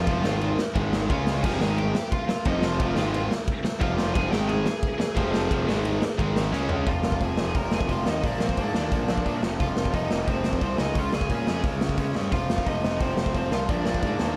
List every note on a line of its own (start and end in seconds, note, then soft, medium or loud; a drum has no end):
0.00 0.55 F4 medium
0.00 0.55 F5 medium
0.07 0.23 F1 loud
0.07 0.24 F2 medium
0.07 0.24 C3 loud
0.07 0.24 F3 loud
0.07 kick loud
0.07 ride medium
0.24 0.56 G#1 medium
0.24 0.58 G#2 loud
0.24 0.59 D#3 medium
0.24 0.59 G#3 loud
0.24 snare loud
0.41 ride medium
0.59 snare loud
0.75 1.07 G#1 loud
0.75 1.09 G#2 medium
0.75 1.08 D#3 loud
0.75 1.08 G#3 loud
0.75 kick loud
0.75 ride medium
0.93 snare loud
1.09 1.42 C#2 loud
1.09 1.43 C#3 medium
1.09 1.43 G#3 medium
1.09 1.44 C#4 loud
1.09 1.41 F4 medium
1.09 1.42 F5 medium
1.09 kick loud
1.09 ride medium
1.27 snare loud
1.42 1.59 F1 medium
1.42 1.60 F2 loud
1.42 1.60 C3 medium
1.42 1.61 F3 loud
1.42 1.75 G#4 medium
1.42 1.75 G#5 loud
1.42 kick loud
1.42 crash loud
1.60 1.92 G#1 loud
1.60 1.94 G#2 medium
1.60 1.94 D#3 loud
1.60 1.95 G#3 loud
1.60 snare loud
1.77 2.09 G4 medium
1.77 2.10 G5 loud
1.77 ride medium
1.95 snare loud
2.12 2.43 F4 medium
2.12 2.44 F5 loud
2.12 kick loud
2.12 ride medium
2.29 muted distorted electric guitar stroke medium
2.29 muted picked electric bass stroke soft
2.29 muted overdriven electric guitar stroke medium
2.29 snare loud
2.45 2.77 F1 loud
2.45 2.79 F2 medium
2.45 2.79 C3 medium
2.45 2.80 F3 loud
2.45 2.62 D#4 medium
2.45 2.64 D#5 medium
2.45 kick loud
2.45 ride medium
2.62 3.27 F4 medium
2.62 3.32 F5 medium
2.62 snare loud
2.80 2.96 F1 loud
2.80 2.95 F2 medium
2.80 2.96 C3 loud
2.80 2.96 F3 loud
2.80 kick loud
2.80 ride medium
2.96 3.29 G#1 loud
2.96 3.30 G#2 loud
2.96 3.30 D#3 medium
2.96 3.30 G#3 loud
2.96 snare loud
3.14 ride medium
3.31 snare loud
3.48 kick loud
3.48 ride medium
3.63 muted distorted electric guitar stroke medium
3.63 muted picked electric bass stroke soft
3.63 muted overdriven electric guitar stroke medium
3.63 snare loud
3.80 4.13 F1 loud
3.80 4.14 F2 medium
3.80 4.15 C3 loud
3.80 4.15 F3 loud
3.80 4.13 F4 medium
3.80 4.17 F5 medium
3.80 kick loud
3.80 ride medium
3.98 snare loud
4.14 4.31 F1 medium
4.14 4.31 F2 medium
4.14 4.32 C3 loud
4.14 4.33 F3 loud
4.14 4.31 G#4 medium
4.14 4.31 G#5 loud
4.14 kick loud
4.14 ride medium
4.31 4.64 G#1 loud
4.31 4.66 G#2 medium
4.31 4.66 D#3 loud
4.31 4.66 G#3 loud
4.31 4.48 G4 medium
4.31 4.48 G5 loud
4.31 snare loud
4.48 6.49 G#4 medium
4.48 6.52 G#5 loud
4.48 ride medium
4.66 snare loud
4.83 kick loud
4.83 ride medium
4.98 muted distorted electric guitar stroke medium
4.98 muted picked electric bass stroke soft
4.98 muted overdriven electric guitar stroke medium
4.98 snare loud
5.16 5.48 F1 loud
5.16 5.49 F2 medium
5.16 5.50 C3 medium
5.16 5.50 F3 loud
5.16 kick loud
5.16 ride medium
5.34 snare loud
5.50 5.67 F1 medium
5.50 5.67 F2 loud
5.50 5.68 C3 medium
5.50 5.68 F3 loud
5.50 kick loud
5.50 ride medium
5.68 6.00 G#1 medium
5.68 6.02 G#2 loud
5.68 6.02 D#3 medium
5.68 6.03 G#3 loud
5.68 snare loud
5.85 ride medium
6.02 snare loud
6.19 6.51 G#1 loud
6.19 6.52 G#2 loud
6.19 6.53 D#3 loud
6.19 6.52 G#3 loud
6.19 kick loud
6.19 ride medium
6.36 snare loud
6.52 6.84 C#2 loud
6.52 6.87 C#3 medium
6.52 6.87 G#3 medium
6.52 6.87 C#4 loud
6.52 snare medium
6.69 floor tom loud
6.86 7.01 F1 medium
6.86 7.19 F2 medium
6.86 7.20 C3 loud
6.86 7.21 F3 loud
6.86 7.19 F4 medium
6.86 7.23 F5 medium
6.86 kick loud
6.86 open hi-hat medium
7.03 7.17 F1 medium
7.03 snare loud
7.12 kick medium
7.20 7.35 F1 medium
7.20 7.38 F2 medium
7.20 7.37 C3 medium
7.20 7.37 F3 medium
7.20 7.54 G#4 medium
7.20 7.57 G#5 loud
7.20 kick loud
7.20 open hi-hat medium
7.36 7.51 F1 medium
7.36 7.53 F2 medium
7.36 7.54 C3 medium
7.36 7.56 F3 medium
7.36 snare loud
7.54 7.69 F1 loud
7.54 7.87 F2 medium
7.54 7.87 C3 medium
7.54 7.89 F3 medium
7.54 7.71 A#4 medium
7.54 7.73 A#5 medium
7.54 kick loud
7.54 open hi-hat medium
7.71 7.86 F1 medium
7.71 7.89 G#4 medium
7.71 7.90 G#5 medium
7.71 snare loud
7.81 kick medium
7.88 8.03 F1 medium
7.88 8.05 F2 medium
7.88 8.05 C3 medium
7.88 8.05 F3 loud
7.88 8.06 F4 medium
7.88 kick medium
7.88 open hi-hat medium
7.92 8.07 F5 medium
8.05 8.20 D#2 medium
8.05 8.22 F2 medium
8.05 8.22 C3 medium
8.05 8.24 F3 medium
8.05 snare loud
8.10 8.24 D#4 medium
8.10 8.24 D#5 medium
8.23 8.38 A#1 medium
8.23 8.55 A#2 medium
8.23 8.57 F3 loud
8.23 8.56 A#3 loud
8.23 8.40 D4 medium
8.23 8.44 D5 medium
8.23 kick loud
8.23 open hi-hat medium
8.40 8.54 A#1 medium
8.40 8.57 C4 medium
8.40 8.62 C5 medium
8.40 snare loud
8.49 kick medium
8.57 8.71 G#2 medium
8.57 8.74 A#2 medium
8.57 8.75 F3 medium
8.57 8.73 A#3 medium
8.57 8.75 D4 medium
8.57 kick loud
8.57 open hi-hat medium
8.62 8.76 D5 medium
8.74 8.88 D#2 medium
8.74 8.90 A#2 medium
8.74 8.92 F3 medium
8.74 8.91 A#3 medium
8.74 9.39 D4 medium
8.74 9.40 D5 loud
8.74 snare loud
8.92 9.05 A#1 loud
8.92 9.24 A#2 medium
8.92 9.25 F3 loud
8.92 9.25 A#3 loud
8.92 kick loud
8.92 open hi-hat medium
9.08 9.22 A#1 medium
9.08 snare loud
9.18 kick medium
9.25 9.41 A#2 medium
9.25 9.39 A#2 medium
9.25 9.43 F3 medium
9.25 9.42 A#3 medium
9.25 kick medium
9.25 open hi-hat medium
9.42 9.57 F1 medium
9.42 9.59 F2 loud
9.42 9.58 C3 loud
9.42 9.58 F3 loud
9.42 snare loud
9.58 9.74 F1 medium
9.58 9.93 F2 medium
9.58 9.93 C3 loud
9.58 9.92 F3 medium
9.58 9.92 F4 medium
9.58 kick loud
9.58 open hi-hat medium
9.63 9.93 F5 medium
9.77 9.91 F1 medium
9.77 snare loud
9.85 kick medium
9.93 10.08 F1 medium
9.93 10.09 F2 medium
9.93 10.09 C3 medium
9.93 10.11 F3 medium
9.93 10.26 D#4 medium
9.93 10.29 D#5 medium
9.93 kick loud
9.93 open hi-hat medium
10.10 10.25 F1 medium
10.10 10.28 F2 medium
10.10 10.27 C3 medium
10.10 10.27 F3 medium
10.10 snare loud
10.27 10.41 F1 medium
10.27 10.60 F2 medium
10.27 10.60 C3 medium
10.27 10.60 F3 loud
10.27 10.60 C4 medium
10.27 10.60 C5 medium
10.27 kick loud
10.27 open hi-hat medium
10.44 10.59 F1 medium
10.44 snare loud
10.53 kick medium
10.60 10.75 C2 medium
10.60 10.78 F2 medium
10.60 10.77 C3 medium
10.60 10.78 F3 medium
10.60 10.77 C4 medium
10.60 10.79 C5 medium
10.60 kick loud
10.60 open hi-hat medium
10.77 10.93 C#2 medium
10.77 10.94 C#3 loud
10.77 10.94 G#3 loud
10.77 10.93 C#4 loud
10.77 10.94 D#4 medium
10.77 10.98 D#5 medium
10.77 snare loud
10.94 11.10 C#2 medium
10.94 11.30 C#3 medium
10.94 11.30 G#3 medium
10.94 11.28 C#4 medium
10.94 11.13 F4 medium
10.94 kick loud
10.94 open hi-hat medium
10.98 11.14 F5 medium
11.13 11.27 C#2 medium
11.13 11.61 G#4 medium
11.13 11.61 G#5 medium
11.13 snare loud
11.21 kick medium
11.29 11.44 A#2 medium
11.29 11.45 C#3 medium
11.29 11.47 G#3 medium
11.29 11.47 C#4 loud
11.29 kick loud
11.29 open hi-hat medium
11.46 11.61 F2 medium
11.46 11.65 C#3 medium
11.46 11.64 G#3 medium
11.46 11.63 C#4 medium
11.46 snare loud
11.64 11.78 C#2 loud
11.64 11.99 C#3 medium
11.64 11.99 G#3 medium
11.64 11.98 C#4 loud
11.64 kick loud
11.64 open hi-hat medium
11.81 11.95 C#2 medium
11.81 snare loud
11.89 kick medium
11.97 12.12 C#3 medium
11.97 12.14 C#3 medium
11.97 12.15 G#3 medium
11.97 12.15 C#4 medium
11.97 kick loud
11.97 open hi-hat medium
12.15 12.30 G2 medium
12.15 12.31 C#3 medium
12.15 12.32 G#3 medium
12.15 12.32 C#4 medium
12.15 snare medium
12.32 12.46 F1 medium
12.32 12.66 F2 medium
12.32 12.66 C3 medium
12.32 12.67 F3 loud
12.32 12.64 F4 medium
12.32 12.67 F5 loud
12.32 kick loud
12.32 open hi-hat medium
12.50 12.64 F1 medium
12.50 snare loud
12.58 kick medium
12.66 12.80 F1 medium
12.66 12.84 F2 medium
12.66 12.83 C3 medium
12.66 12.83 F3 medium
12.66 12.98 D#4 medium
12.66 12.99 D#5 loud
12.66 kick medium
12.66 open hi-hat medium
12.84 12.98 F1 medium
12.84 12.99 F2 medium
12.84 13.00 C3 medium
12.84 13.01 F3 medium
12.84 snare loud
13.00 13.14 F1 loud
13.00 13.34 F2 medium
13.00 13.34 C3 medium
13.00 13.36 F3 loud
13.00 13.33 C4 medium
13.00 13.35 C5 medium
13.00 kick loud
13.00 open hi-hat medium
13.17 13.31 F1 medium
13.17 snare loud
13.26 kick medium
13.34 13.48 F1 medium
13.34 13.52 F2 medium
13.34 13.52 C3 medium
13.34 13.51 F3 loud
13.34 13.51 C4 medium
13.34 13.51 C5 medium
13.34 kick medium
13.34 open hi-hat medium
13.51 13.65 C2 medium
13.51 13.68 F2 medium
13.51 13.68 C3 medium
13.51 13.69 F3 medium
13.51 13.68 F4 medium
13.51 13.69 F5 medium
13.51 snare loud
13.69 13.83 A#1 medium
13.69 14.02 A#2 loud
13.69 14.04 F3 medium
13.69 14.03 A#3 loud
13.69 13.86 D4 medium
13.69 13.85 D5 medium
13.69 kick loud
13.69 open hi-hat medium
13.86 14.00 A#1 medium
13.86 14.34 D4 medium
13.86 14.33 D5 medium
13.86 snare loud
13.94 kick medium
14.03 14.17 G#2 loud
14.03 14.20 A#2 medium
14.03 14.20 F3 medium
14.03 14.19 A#3 medium
14.03 kick loud
14.03 open hi-hat medium
14.19 14.34 D#2 medium
14.19 14.36 A#2 medium
14.19 14.36 F3 medium
14.19 14.36 A#3 medium
14.19 snare loud